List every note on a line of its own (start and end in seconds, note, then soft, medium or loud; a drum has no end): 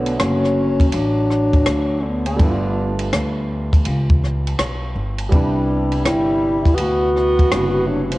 0.00 0.16 B1 medium
0.00 0.20 D3 medium
0.00 2.34 D3 medium
0.00 2.35 A3 medium
0.00 0.22 B3 medium
0.00 2.36 B3 medium
0.00 2.37 F#4 medium
0.00 2.36 C#5 medium
0.06 ride medium
0.19 0.90 F#1 medium
0.19 0.92 F#3 medium
0.19 0.95 C#4 medium
0.19 cross-stick loud
0.19 hi-hat pedal soft
0.19 ride medium
0.44 cross-stick soft
0.80 kick medium
0.80 ride medium
0.92 1.63 A1 loud
0.92 2.01 F#3 medium
0.92 2.03 D4 loud
0.92 ride medium
1.31 cross-stick soft
1.54 kick medium
1.54 ride soft
1.66 2.36 D2 medium
1.66 cross-stick loud
1.66 hi-hat pedal soft
1.66 ride medium
2.00 2.25 D3 medium
2.00 2.03 E3 soft
2.00 2.06 C#4 medium
2.05 2.28 B3 medium
2.26 2.95 D3 medium
2.26 2.97 B3 medium
2.26 ride medium
2.36 3.09 G1 medium
2.36 5.27 G3 medium
2.36 5.27 A3 medium
2.36 5.28 B3 medium
2.36 kick loud
2.36 ride medium
2.41 5.29 D4 medium
2.41 2.50 E4 medium
2.49 5.33 F4 medium
2.99 ride medium
3.13 3.82 D2 medium
3.13 cross-stick medium
3.13 hi-hat pedal soft
3.13 ride medium
3.73 kick medium
3.73 ride medium
3.85 4.56 C#2 medium
3.85 ride medium
4.10 kick loud
4.24 cross-stick soft
4.47 ride soft
4.59 4.94 B1 medium
4.59 cross-stick loud
4.59 hi-hat pedal medium
4.59 ride medium
4.96 5.30 G1 medium
5.18 ride medium
5.29 6.02 C2 loud
5.29 7.48 C3 medium
5.29 7.46 G3 medium
5.29 6.01 G3 medium
5.29 7.47 B3 medium
5.29 kick loud
5.29 ride medium
5.34 7.49 D4 medium
5.34 6.02 D4 medium
5.34 7.49 E4 medium
5.92 ride medium
6.04 6.75 G1 medium
6.04 6.76 G3 medium
6.04 6.77 E4 loud
6.04 cross-stick medium
6.04 hi-hat pedal medium
6.04 ride medium
6.65 kick medium
6.65 ride medium
6.74 6.77 B3 medium
6.74 7.89 B3 medium
6.74 6.80 G4 medium
6.74 ride medium
6.79 7.48 D2 medium
6.79 7.90 F#4 loud
7.16 cross-stick soft
7.39 kick medium
7.39 ride soft
7.50 8.18 F#1 medium
7.50 8.18 C3 soft
7.50 8.18 G3 soft
7.50 8.18 B3 soft
7.50 8.18 D4 soft
7.50 8.18 E4 medium
7.50 cross-stick loud
7.50 hi-hat pedal medium
7.50 ride medium
7.87 8.02 F#3 medium
7.87 8.03 D4 medium
8.03 8.13 E3 soft
8.03 8.14 C#4 medium
8.11 8.18 F3 medium
8.11 8.18 D4 medium
8.11 ride medium